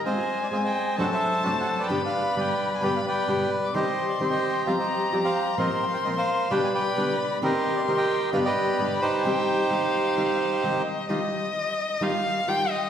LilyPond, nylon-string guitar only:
\new Staff \with { instrumentName = "Nylon-string guitar" } { \clef bass \time 4/4 \key c \minor \tempo 4 = 130 <aes c' f'>8 r8 <aes c' f'>8 r8 <fis, c fis a d' fis'>8 r8 <fis, c fis a d' fis'>8 r8 | <g, b, d g b g'>8 r8 <g, b, d g b g'>8 r8 <g, b, d g b g'>8 r8 <g, b, d g b g'>8 r8 | <c ees g c' g'>8 r8 <c ees g c' g'>8 r8 <f g c' g'>8 r8 <f g c' g'>8 r8 | <bes, f bes c' f'>8 r8 <bes, f bes c' f'>8 r8 <b, d g b g'>8 r8 <b, d g b g'>8 r8 |
<c ees bes c' g'>8 r8 <c ees bes c' g'>8 r8 <g, b, d g b g'>8 r8 <g, b, d g b g'>8 r8 | <c ees g c' g'>8 r8 <c ees g c' g'>8 r8 <c ees g c' g'>8 r8 <c ees g c' g'>8 r8 | \key ees \major <ees g ees' f'>8 r4. <ees g ees' f'>8 r8 <ees g ees' f'>8 r8 | }